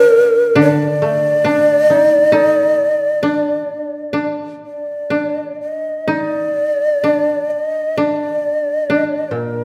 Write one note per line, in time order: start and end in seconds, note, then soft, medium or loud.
0.00 0.55 D3 medium
0.00 0.55 D4 medium
0.00 0.56 A#4 loud
0.00 0.02 D5 loud
0.55 3.21 D3 medium
0.55 1.44 D4 medium
0.62 4.32 D5 loud
1.02 2.77 A3 soft
1.44 2.38 D4 medium
1.44 3.22 D4 soft
1.90 3.69 D#4 soft
2.32 3.29 D#4 medium
2.32 4.15 A4 soft
3.23 4.13 D4 medium
4.13 5.10 D4 medium
4.66 5.57 D5 medium
5.10 6.14 D4 medium
5.61 6.11 D#5 medium
6.08 7.10 D#4 medium
6.08 7.52 D5 medium
7.04 7.97 D4 medium
7.50 7.98 D#5 medium
7.97 8.89 D4 medium
7.97 9.36 D5 medium
8.90 9.64 D4 medium
9.31 9.64 A#2 soft
9.31 9.64 A#4 medium